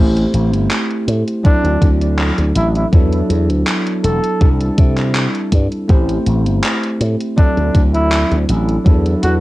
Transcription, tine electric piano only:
Already playing: A3 C4 E4 G4
0.00 C5
1.43 F#3 C4 D4 E4 A4
2.92 F#3 B3 D4 E4 A4
4.40 G3 C4 D4 E4 A4
5.88 A3 C4 E4 G4 C5
7.36 F#3 C4 D4 E4 A4
8.84 F#3 B3 D4 E4 A4

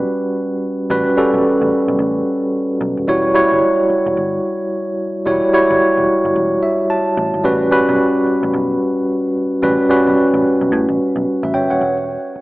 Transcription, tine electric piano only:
Already playing: G3 C#4 F#4 B4
0.90 G3 C#4 F#4 B4
1.17 G3 C#4 F#4 A4
3.08 G3 E4 F#4 C#5
3.34 G3 E4 F#4 C#5
5.26 G3 E4 F#4 C#5
5.53 G3 E4 F#4 C#5
6.63 E5
6.90 A5
7.44 G3 C#4 F#4 B4
7.71 G3 C#4 F#4 B4
9.62 G3 C#4 F#4 B4
9.89 G3 C#4 F#4 B4
11.43 B4 E5
11.54 C#5 G5
11.70 C#5 F#5

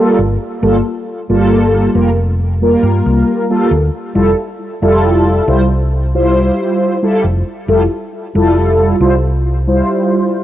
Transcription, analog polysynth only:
Already playing: G3 A#3 F4 A4
0.62 G3 A#3 F4 A4
1.29 G3 A#3 F4 A4
1.94 G3 A#3 F4 A#4
2.61 G3 A#3 F4 A#4
3.49 G3 A#3 F4 A4
4.15 G3 E4 F4 A4
4.82 G3 E4 F4 A4
5.47 G3 E4 F4 C5
6.14 G3 E4 F4 C5
7.02 G3 E4 F4 A4
7.68 G3 E4 F4 A4
8.34 G3 E4 F4 A4
9.00 G3 E4 F4 C5
9.67 G3 E4 F4 C5

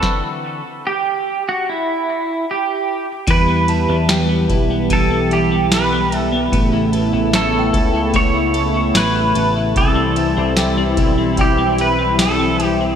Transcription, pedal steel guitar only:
Already playing: A4
0.87 G4
1.49 F#4
1.69 E4
2.51 G4
3.31 B4
4.93 A4
5.33 G4
5.74 B4
6.17 A4
7.35 A4
8.16 C#5
8.97 B4
9.77 A4
11.41 G4
11.81 B4
12.22 A4
12.65 G4

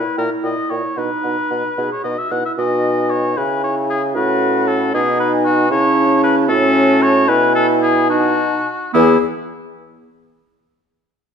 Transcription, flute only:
0.17 G5
0.43 G5
0.69 G5
0.96 F#5
1.23 F#5
1.50 F#5
1.77 F#5
2.03 F#5
2.31 F#5
2.58 G#5
3.36 G#5
4.16 F#5
4.94 F#5
5.32 G#5
5.72 A5
6.49 A5
7.29 G#5
8.10 A5
8.95 G#4

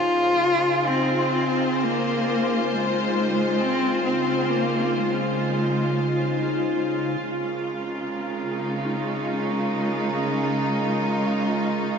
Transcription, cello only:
Already playing: F4
0.87 C4
1.83 A#3
2.71 G#3
3.60 C4
4.05 C4
4.50 A#3
4.97 G#3
7.27 C4
9.94 C#4
10.85 F4

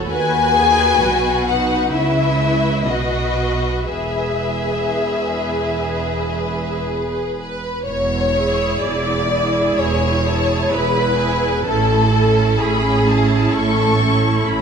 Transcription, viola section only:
Already playing: A4
0.11 B4
0.56 G#4
1.02 F#4
1.48 D#4
1.94 E4
2.88 F#4
3.88 G#4
8.36 E4 G#4
9.29 E4 G#4
10.25 E4 G#4
11.19 E4 G#4
11.66 C#4 E4
12.13 C#4 E4
13.07 C#4 E4
14.02 C#4 E4

